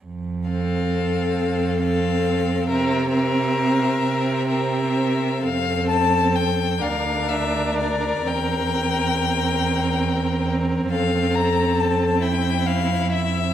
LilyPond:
<<
  \new Staff \with { instrumentName = "Violin" } { \time 6/8 \key f \major \tempo 4. = 45 r8 f''4. f''4 | e''8 e''4. e''4 | f''8 a''8 g''8 f''8 e''8 d''8 | g''2~ g''8 r8 |
f''8 bes''8 a''8 g''8 f''8 e''8 | }
  \new Staff \with { instrumentName = "Violin" } { \time 6/8 \key f \major r8 a'4. a'4 | bes'8 bes'4. bes'4 | a'4. bes'4.~ | bes'2. |
a'4. e'4. | }
  \new Staff \with { instrumentName = "Viola" } { \time 6/8 \key f \major r8 c'4. c'4 | c'8 c'4. c'4 | c'4. d'4. | c'2.~ |
c'2. | }
  \new Staff \with { instrumentName = "Cello" } { \clef bass \time 6/8 \key f \major f,4. f,4. | c4. c4. | f,4. d,4. | e,2. |
f,2. | }
>>